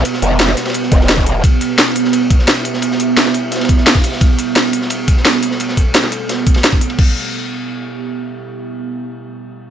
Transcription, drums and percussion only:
0.05 closed hi-hat, ride
0.14 snare
0.22 closed hi-hat
0.40 snare, closed hi-hat, ride
0.48 snare
0.57 snare, closed hi-hat, ride
0.65 snare, ride
0.70 snare, ride
0.74 closed hi-hat, ride
0.83 snare
0.91 kick, closed hi-hat, ride
1.01 snare
1.09 snare, closed hi-hat, ride
1.18 kick
1.26 closed hi-hat, ride
1.44 kick, closed hi-hat, ride
1.61 closed hi-hat, ride
1.78 snare, closed hi-hat, ride
1.96 closed hi-hat, ride
2.05 snare
2.13 closed hi-hat, ride
2.30 kick, closed hi-hat, ride
2.39 snare
2.47 snare, closed hi-hat, ride
2.65 closed hi-hat, ride
2.74 snare
2.82 closed hi-hat, ride
2.91 snare
3.00 closed hi-hat, ride
3.17 snare, closed hi-hat, ride
3.26 snare
3.34 closed hi-hat, ride
3.52 snare, closed hi-hat, ride
3.55 snare, ride
3.61 snare, ride
3.65 snare, ride
3.69 kick, closed hi-hat, ride
3.78 snare
3.86 snare, closed hi-hat, open hi-hat
3.95 kick
4.04 closed hi-hat, ride
4.12 snare
4.21 kick, closed hi-hat, ride
4.39 closed hi-hat, ride
4.56 snare, closed hi-hat, ride
4.73 closed hi-hat, ride
4.82 snare
4.90 closed hi-hat, ride
5.08 kick, closed hi-hat, ride
5.17 snare
5.25 snare, closed hi-hat, ride
5.43 closed hi-hat, ride
5.51 snare
5.60 closed hi-hat, ride
5.69 snare
5.77 kick, closed hi-hat, ride
5.95 snare, closed hi-hat, ride
6.03 snare
6.12 closed hi-hat, ride
6.29 snare, closed hi-hat, ride
6.46 kick, closed hi-hat, ride
6.54 snare, ride
6.64 snare, closed hi-hat
6.72 kick, ride
6.81 closed hi-hat
6.90 ride
6.99 kick, crash

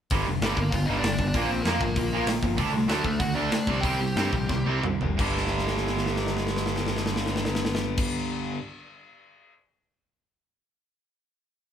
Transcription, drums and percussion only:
0.10 kick, open hi-hat
0.42 snare, open hi-hat
0.57 kick
0.72 kick, open hi-hat
1.04 snare, open hi-hat
1.19 kick
1.34 kick, open hi-hat
1.65 snare, open hi-hat
1.81 kick
1.96 kick, open hi-hat
2.27 snare, open hi-hat
2.43 kick
2.58 kick, open hi-hat
2.89 snare, open hi-hat
3.04 kick
3.20 kick, open hi-hat
3.52 snare, open hi-hat
3.67 kick
3.83 kick, open hi-hat
4.16 snare, open hi-hat
4.33 kick
4.49 kick, snare
4.84 mid tom
5.01 floor tom
5.19 kick, crash
5.37 snare
5.47 snare
5.58 snare
5.67 snare
5.77 snare
5.87 snare
5.97 snare
6.06 snare
6.16 snare
6.26 snare
6.37 snare
6.47 snare
6.56 snare
6.66 snare
6.76 snare
6.87 snare
6.97 snare
7.06 snare
7.16 snare
7.26 snare
7.36 snare
7.45 snare
7.55 snare
7.65 snare
7.75 snare
7.97 kick, crash

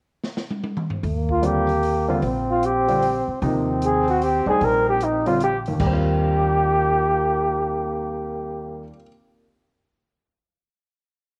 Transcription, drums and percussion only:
0.24 snare
0.37 snare
0.51 high tom
0.64 high tom
0.77 mid tom
0.90 floor tom
1.03 kick, open hi-hat
1.29 kick
1.43 closed hi-hat
1.69 open hi-hat
1.83 open hi-hat
2.22 kick, open hi-hat
2.63 closed hi-hat
2.88 open hi-hat
3.02 open hi-hat
3.42 kick, open hi-hat
3.82 closed hi-hat
4.08 open hi-hat
4.22 open hi-hat
4.61 kick, open hi-hat
5.01 closed hi-hat
5.26 open hi-hat
5.40 closed hi-hat
5.66 open hi-hat
5.80 kick, floor tom, crash

